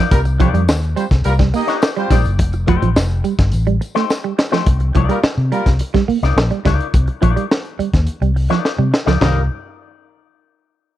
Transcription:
Already playing: F4 A#4 D5
0.00 D#4
0.11 C2 G3 A#3 F4 A#4, kick, closed hi-hat, tambourine
0.25 muted clean electric guitar stroke, closed hi-hat, tambourine
0.40 F3 G3 C4 D#4 F4 A#4 C5 D5, kick, closed hi-hat
0.54 F2 G3, closed hi-hat
0.68 D#2, snare, tambourine
0.82 closed hi-hat
0.96 G3 C4 F4 C5, closed hi-hat, tambourine
1.11 C2, kick, snare, closed hi-hat, tambourine
1.24 C2 G3 A#3 F4 A#4, muted clean electric guitar stroke, closed hi-hat, tambourine
1.39 G3, kick, snare, closed hi-hat
1.54 A#3 D#4 G4 D#5, open hi-hat, tambourine
1.67 D#4 F4 A#4 D5, snare, closed hi-hat, tambourine
1.82 muted clean electric guitar stroke, snare, tambourine
1.96 G3 C4 F4 C5, closed hi-hat
2.10 A#1 G3 D#4 F4 A#4 D5, kick, snare, closed hi-hat, tambourine
2.24 F#1, closed hi-hat, tambourine
2.39 F1, kick, closed hi-hat, tambourine
2.53 muted clean electric guitar stroke, closed hi-hat, tambourine
2.67 F3 A3 D#4 G4 C5, kick, closed hi-hat
2.82 A1 F3, closed hi-hat
2.96 F1, snare, tambourine
3.10 closed hi-hat
3.24 G3, closed hi-hat, tambourine
3.39 G1, kick, snare, closed hi-hat
3.52 A1, closed hi-hat, tambourine
3.67 G3, closed hi-hat
3.81 muted clean electric guitar stroke, closed hi-hat, tambourine
3.95 A3 D#4 G4 C5, snare, closed hi-hat
4.10 snare, tambourine
4.24 G3
4.38 muted clean electric guitar stroke, snare, tambourine
4.52 F3 A3 D#4 G4 C5, snare
4.66 C2, kick, closed hi-hat
4.80 muted clean electric guitar stroke, closed hi-hat
4.95 C2 F3 D#4 F4 A#4 D5, kick, closed hi-hat
5.09 G3 A#3 F4 A#4, closed hi-hat
5.23 muted fingered electric bass stroke, snare
5.38 C3
5.52 G3 A#3 F4 A#4, closed hi-hat
5.66 C2, kick, snare, closed hi-hat
5.79 muted clean electric guitar stroke, closed hi-hat
5.94 G3, kick, snare, closed hi-hat
6.08 A#3, muted fingered electric bass stroke, open hi-hat
6.23 C2 D#4 F4 A#4 D5, snare, closed hi-hat
6.36 A#1, muted clean electric guitar stroke, snare
6.51 G3, closed hi-hat
6.65 C#2 G3 D#4 F4 A#4 D5, kick, snare, closed hi-hat
6.80 closed hi-hat
6.94 C2, kick, closed hi-hat
7.07 muted clean electric guitar stroke, closed hi-hat
7.21 A#1 F3 D#4 F4 A#4 D5, kick, closed hi-hat
7.36 G3, closed hi-hat
7.51 snare
7.65 closed hi-hat
7.79 G3, muted fingered electric bass stroke, closed hi-hat
7.93 D#2, kick, snare, closed hi-hat
8.07 muted fingered electric bass stroke, closed hi-hat
8.21 C2 G3, closed hi-hat
8.36 muted clean electric guitar stroke, open hi-hat
8.50 F3 D#4 F4 A#4 D5, snare, closed hi-hat
8.65 snare
8.79 C3 G3
8.93 muted clean electric guitar stroke, snare
9.06 C#2 F3 D#4 F4 A#4 D5, snare
9.21 C2 D#3 G3 A#3 D#4 F4 A#4 D5, snare, floor tom, china

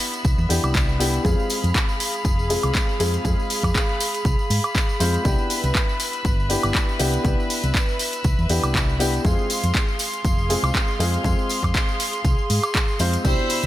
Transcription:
Already playing: B3 D4 E4 G4 E5 B5
0.00 open hi-hat
0.14 closed hi-hat, tambourine
0.25 C2, kick, closed hi-hat, tambourine
0.38 E2, tambourine
0.49 E2 B3 D4 E4 G4, open hi-hat, tambourine
0.63 C2, closed hi-hat, tambourine, high woodblock
0.74 kick, clap, closed hi-hat, tambourine
0.89 tambourine
0.99 B3 D4 E4 G4, open hi-hat, tambourine
1.14 closed hi-hat, tambourine
1.24 F2 G#3 C4 F4 G#4 F5, kick, closed hi-hat, tambourine
1.39 tambourine
1.50 open hi-hat, tambourine
1.64 F2, closed hi-hat, tambourine
1.75 kick, clap, closed hi-hat, tambourine
1.89 tambourine
2.00 open hi-hat, tambourine
2.14 closed hi-hat, tambourine
2.25 F1, kick, closed hi-hat, tambourine
2.39 tambourine
2.49 G#3 C4 F4 G#4, open hi-hat, tambourine
2.63 C2, closed hi-hat, tambourine, high woodblock
2.75 kick, clap, closed hi-hat, tambourine
2.89 tambourine
3.00 F2 G#3 C4 F4 G#4, open hi-hat, tambourine
3.14 closed hi-hat, tambourine
3.24 F2 G#3 C4 F4 G#4, kick, closed hi-hat, tambourine
3.40 tambourine
3.50 open hi-hat, tambourine
3.63 F2, kick, closed hi-hat, tambourine, high woodblock
3.75 kick, clap, closed hi-hat, tambourine
3.89 tambourine
4.00 open hi-hat, tambourine
4.14 closed hi-hat, tambourine
4.25 C2, kick, closed hi-hat, tambourine
4.39 tambourine
4.50 G#2, open hi-hat, tambourine
4.64 closed hi-hat, tambourine, high woodblock
4.75 kick, clap, closed hi-hat, tambourine
4.89 tambourine
5.00 F2 G#3 C4 F4 C5, open hi-hat, tambourine
5.14 closed hi-hat, tambourine
5.24 C2 B3 D4 E4 G4 B4 E5, kick, closed hi-hat, tambourine
5.38 tambourine
5.50 open hi-hat, tambourine
5.64 C2, closed hi-hat, tambourine
5.75 kick, clap, closed hi-hat, tambourine
5.89 tambourine
6.00 open hi-hat, tambourine
6.13 closed hi-hat, tambourine
6.25 G1, kick, closed hi-hat, tambourine
6.40 tambourine
6.49 B3 D4 E4 G4, open hi-hat, tambourine
6.63 G1, closed hi-hat, tambourine, high woodblock
6.75 kick, clap, closed hi-hat, tambourine
6.89 tambourine
6.99 C2 B3 D4 E4 G4, open hi-hat, tambourine
7.14 closed hi-hat, tambourine
7.23 C2 B3 D4 E4 G4, kick, closed hi-hat, tambourine
7.40 tambourine
7.50 open hi-hat, tambourine
7.64 C2, closed hi-hat, tambourine
7.75 kick, clap, closed hi-hat, tambourine
7.89 tambourine
7.99 open hi-hat, tambourine
8.13 closed hi-hat, tambourine
8.24 C2, kick, closed hi-hat, tambourine
8.39 E2, tambourine
8.49 E2 B3 D4 E4 G4, open hi-hat, tambourine
8.63 C2, closed hi-hat, tambourine, high woodblock
8.75 kick, clap, closed hi-hat, tambourine
8.89 tambourine
8.99 B3 D4 E4 G4, open hi-hat, tambourine
9.14 closed hi-hat, tambourine
9.24 F2 G#3 C4 F4 G#4 F5 C6, kick, closed hi-hat, tambourine
9.39 tambourine
9.50 open hi-hat, tambourine
9.64 F2, closed hi-hat, tambourine
9.74 kick, clap, closed hi-hat, tambourine
9.88 tambourine
9.99 open hi-hat, tambourine
10.14 closed hi-hat
10.25 F1, kick, closed hi-hat, tambourine
10.38 tambourine
10.49 G#3 C4 F4 G#4, open hi-hat, tambourine
10.63 C2, tambourine, high woodblock
10.75 kick, clap, closed hi-hat, tambourine
10.88 tambourine
10.99 F2 G#3 C4 F4 G#4, open hi-hat, tambourine
11.13 closed hi-hat, tambourine
11.23 F2 G#3 C4 F4 G#4, kick, closed hi-hat, tambourine
11.39 tambourine
11.49 open hi-hat, tambourine
11.63 F2, kick, tambourine, high woodblock
11.74 kick, clap, closed hi-hat, tambourine
11.88 tambourine
12.00 open hi-hat, tambourine
12.13 closed hi-hat, tambourine
12.24 C2, kick, closed hi-hat, tambourine
12.38 tambourine
12.50 G#2, open hi-hat, tambourine
12.63 tambourine, high woodblock
12.74 kick, clap, closed hi-hat, tambourine
12.88 tambourine
12.99 F2 G#3 C4 F4 C5, open hi-hat, tambourine
13.13 closed hi-hat, tambourine
13.24 C2 B2 D4 E4 G4 C5 E5 B5 E6, kick, closed hi-hat, crash, tambourine
13.39 tambourine
13.50 open hi-hat, tambourine
13.63 C2, tambourine

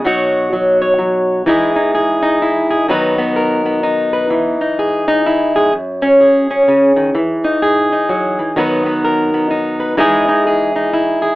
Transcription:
0.04 B2 F#3 D#4 F#4 C#5
0.53 F#3
0.82 C#5
0.99 F#3
1.46 E3 G#3 D#4 E4 G#4
1.76 D#4
1.95 G#4
2.23 D#4
2.42 E4
2.71 G#4
2.88 D#3 F#3 B3 D#4 B4
3.18 B3
3.36 A#4
3.66 B3
3.83 D#4
4.13 B4
4.30 E3
4.61 D#4
4.79 G#4
5.08 D#4
5.26 E4
5.56 G#4
5.73 F#2
6.02 C#4
6.21 G#4
6.51 C#4
6.68 C#3
6.96 D#3
7.15 E3
7.44 D#4
7.62 G#4
7.92 D#4
8.09 F#3
8.39 E3
8.56 D#3 F#3 B3 D#4 B4
8.86 B3
9.04 A#4
9.34 B3
9.51 D#4
9.80 B4
9.97 E3 G#3 D#4 E4 G#4
10.28 D#4
10.47 G#4
10.76 D#4
10.94 E4
11.22 G#4

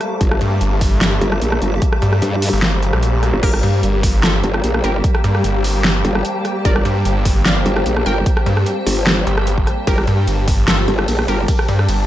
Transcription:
Already playing: G3 A3 A#3 G4 C5 F5 D6
0.01 cross-stick, closed hi-hat
0.21 G1, kick, closed hi-hat
0.31 cross-stick
0.41 G2, closed hi-hat
0.61 G1, closed hi-hat
0.81 kick, open hi-hat
1.01 snare, closed hi-hat
1.21 G1, closed hi-hat
1.32 cross-stick
1.42 A#1, closed hi-hat
1.52 cross-stick
1.62 G1, closed hi-hat
1.82 kick, closed hi-hat
1.93 cross-stick
2.02 G2, closed hi-hat
2.13 cross-stick
2.22 G2, closed hi-hat
2.42 open hi-hat
2.53 G1
2.62 snare, closed hi-hat
2.83 closed hi-hat
2.90 A#1 G5, cross-stick
3.03 closed hi-hat
3.23 cross-stick, closed hi-hat
3.33 G1
3.43 G1 G4 A#4, kick, closed hi-hat, crash
3.54 cross-stick
3.63 G2, closed hi-hat
3.83 G1, closed hi-hat
4.03 kick, open hi-hat
4.10 A5
4.23 F4 A4, snare, closed hi-hat
4.44 G1, closed hi-hat
4.54 cross-stick
4.64 A#1, closed hi-hat
4.74 cross-stick
4.84 G1 G4 A#4, closed hi-hat
5.04 kick, closed hi-hat
5.15 cross-stick
5.24 G2, closed hi-hat
5.35 cross-stick
5.44 G1, closed hi-hat
5.64 open hi-hat
5.84 snare, closed hi-hat
6.05 G1, closed hi-hat
6.15 cross-stick
6.25 closed hi-hat
6.45 cross-stick, closed hi-hat
6.65 G1 A#4 D5, kick, closed hi-hat
6.76 cross-stick
6.85 G2, closed hi-hat
7.05 G1, closed hi-hat
7.25 kick, open hi-hat
7.46 D5 F5, snare, closed hi-hat
7.66 G1, closed hi-hat
7.76 cross-stick
7.86 A#1, closed hi-hat
7.97 cross-stick
8.06 G1 A#4 G5, closed hi-hat
8.26 kick, closed hi-hat
8.37 cross-stick
8.46 G2, closed hi-hat
8.57 cross-stick
8.66 closed hi-hat
8.87 G1, open hi-hat
9.07 snare, closed hi-hat
9.27 G1, closed hi-hat
9.38 cross-stick
9.47 closed hi-hat
9.58 kick
9.67 cross-stick, closed hi-hat
9.87 G1 G4 A#4 A5, kick, closed hi-hat, ride
9.98 cross-stick
10.07 G2, closed hi-hat
10.27 G1, closed hi-hat, ride
10.48 kick, open hi-hat
10.54 D6
10.68 F4 A4, snare, closed hi-hat, ride
10.88 G1, closed hi-hat
10.99 cross-stick
11.08 A#1, closed hi-hat, ride
11.19 cross-stick
11.28 G1 G4 A#4, closed hi-hat
11.48 kick, closed hi-hat, ride
11.59 cross-stick
11.68 G2, closed hi-hat
11.79 cross-stick
11.89 G1, closed hi-hat, ride

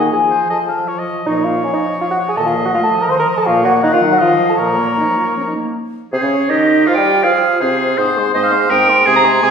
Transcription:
Already playing: A#3 D#5 G#5
0.12 F3 G#4 G#5
0.30 F3 C5
0.50 F3 A4 D#5 A5
0.68 F3 F5
0.88 F3 C#5
0.99 D#5
1.08 F3
1.26 A#2 F3 D#4 C#5 D#5
1.45 F3 F4 F5
1.63 F3 C#4 C#5
1.74 D#4 D#5
1.83 F3
2.00 F3 F4 F5
2.11 F#4 F#5
2.18 F3
2.28 G#4 G#5
2.37 A#2 D#3 A4 D#5 A5
2.46 F4 F5
2.54 F3
2.65 F#4 F#5
2.73 A3 F4 F5
2.83 A4 A5
2.90 F3
3.01 A#4 A#5
3.08 D#3 C5 C6
3.18 A#4 A#5
3.26 F3
3.36 A4 A5
3.45 A#2 F3 F4 C#5 F5
3.63 A#3 F#4 F#5
3.82 D#3 D#4 D#5 F#5
3.93 F4 F5
4.01 F#3
4.11 F#4 F#5
4.19 D#3 F3 F4 D#5 F5
4.40 F3
4.49 A4 A5
4.57 A#2 F3 A#4 C#5 A#5
4.78 A#3
4.97 F3 D#4
5.17 A#3 F4
5.36 F3 C#4
5.47 D#4
5.56 A#3
6.13 C3 C4 G#4 C5
6.21 C#3 C#4 C#5
6.49 D#3 D#4 G4 D#5
6.86 F3 F4 F5
6.94 G3 G4 G5
7.23 F3 F4 G#4 F5
7.60 C3 C4 G#4 C5
7.98 G#2 C4 C5 D#6
8.17 G#3 C6
8.34 G#2 C4 C5 D#5 D#6
8.43 F5
8.52 G#3 C6
8.70 G#2 C4 A#4 G5 D#6
8.90 G#3 C6
9.06 C3 C4 G#4 G#5 D#6
9.16 A#5
9.25 G#3 C6
9.43 C3 C4 G#5 D#6

